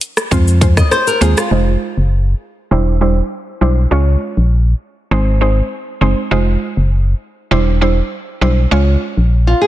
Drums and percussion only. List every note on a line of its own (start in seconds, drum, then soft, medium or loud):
0.01 closed hi-hat medium
0.01 shaker soft
0.17 cross-stick medium
0.17 shaker medium
0.32 kick medium
0.32 shaker medium
0.48 shaker medium
0.61 kick medium
0.61 closed hi-hat medium
0.61 shaker soft
0.77 kick medium
0.77 cross-stick medium
0.77 shaker medium
0.92 cross-stick medium
0.92 shaker medium
1.07 shaker medium
1.22 closed hi-hat medium
1.22 shaker medium
1.37 cross-stick medium
1.37 shaker medium